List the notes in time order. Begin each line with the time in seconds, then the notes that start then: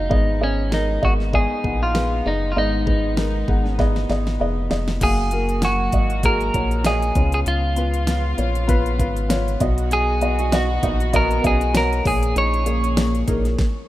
Already playing: D#4 F#4 C#5 F5
0.09 G#1 G#2 G#3 B3 D#4 G#4 D#5, kick
0.40 B3 C#4 G#4 D#5
0.71 B3 D#4 G#4 A#4, snare
1.01 G#1 B3 F#4 G#4 D#5, kick
1.20 snare
1.33 B3 G#4 D#5, kick
1.63 A#1 B3 G#4 F#5, kick
1.83 F4
1.94 B3 G#4 B4, snare
2.25 F#1 B3 D#4 G#4 D#5
2.52 F4
2.56 G#1 G#2 B3 D#4 G#4 D#5
2.86 B3 G#4 B4, kick
3.17 B3 G#4 A#4, snare
3.48 G#1 B3 G#4 F#5, kick
3.66 snare
3.79 B3 G#4 D#5, kick, snare
3.96 snare
4.09 G#1 B3 G#4 D#5, snare
4.27 snare
4.40 F1 B3 G#4 D#5
4.70 F1 B3 G#4 D#5, snare
4.88 snare
5.01 F#1 F#3 A#3 F#4 G#4 F5, kick, closed hi-hat, crash
5.31 A#3 F#4 A#4, closed hi-hat
5.49 closed hi-hat
5.62 A#3 F#4 G#5, snare, closed hi-hat
5.92 G#1 A#3 F#4 D#5, kick, closed hi-hat
6.10 closed hi-hat
6.23 A#3 F#4 G#4 A#4, kick, closed hi-hat
6.41 closed hi-hat
6.54 A#1 A#3 F#4 C#5, kick, closed hi-hat
6.71 closed hi-hat
6.84 A#3 F#4 G#4 D#5, snare, closed hi-hat
7.02 closed hi-hat
7.15 C#2 C#3 B3 F4 C#5, kick, closed hi-hat
7.32 G#4, closed hi-hat
7.46 C#2 F4, closed hi-hat
7.76 B3 F4 B4, closed hi-hat
7.94 closed hi-hat
8.07 B3 F4 B4, snare, closed hi-hat
8.38 A#1 B3 F4 C#5, closed hi-hat
8.55 closed hi-hat
8.68 B3 F4 B4, kick, closed hi-hat
8.86 closed hi-hat
8.99 G#1 B3 F4 B4, kick, closed hi-hat
9.17 closed hi-hat
9.29 B3 F4 C#5, snare, closed hi-hat
9.48 closed hi-hat
9.60 B1 B2 D#3 B3 F#4 D#5, kick, closed hi-hat
9.78 closed hi-hat
9.91 G#4, closed hi-hat
10.21 B3 F#4 D#5, closed hi-hat
10.39 F#4, closed hi-hat
10.52 B3 F#4 D#5, snare, closed hi-hat
10.82 A#1 B3 D#4 F#4 D#5, kick, closed hi-hat
11.00 closed hi-hat
11.13 B3 F#4 A#4 D#5, kick, closed hi-hat
11.31 closed hi-hat
11.43 B1 B3 C#4 F#4 G#4 D#5, kick, closed hi-hat
11.61 closed hi-hat
11.73 B3 F#4 A#4 C#5, snare, closed hi-hat
11.93 closed hi-hat
12.05 A#1 A#2 C#3 A#3 G#4 C#5, kick, open hi-hat
12.23 closed hi-hat
12.36 A#1 D#4 C#5, closed hi-hat
12.54 closed hi-hat
12.66 A#3 C#4 G#4 C#5, closed hi-hat
12.84 closed hi-hat
12.96 A#3 G#4 C#5, snare, closed hi-hat
13.15 closed hi-hat
13.27 A#1 A#3 D#4 G#4 A#4, kick, closed hi-hat
13.45 snare, closed hi-hat
13.59 kick, snare